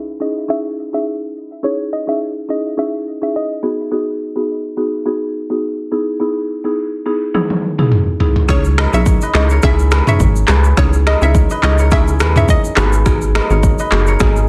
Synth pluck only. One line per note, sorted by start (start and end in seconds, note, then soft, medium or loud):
0.22 0.34 D#5 medium
0.50 0.63 E5 loud
0.94 1.05 E5 medium
1.64 1.77 C#5 loud
1.93 2.06 D#5 medium
2.09 2.19 E5 medium
2.50 2.63 D#5 medium
2.79 2.92 E5 medium
3.23 3.33 E5 medium
3.36 3.77 D#5 medium
8.50 8.63 C#5 loud
8.79 8.91 D#5 medium
8.94 9.05 E5 medium
9.36 9.49 D#5 medium
9.64 9.77 E5 loud
10.09 10.19 E5 medium
10.79 10.91 C#5 loud
11.07 11.20 D#5 medium
11.23 11.33 E5 medium
11.64 11.77 D#5 medium
11.93 12.06 E5 medium
12.37 12.48 E5 medium
12.50 12.91 D#5 medium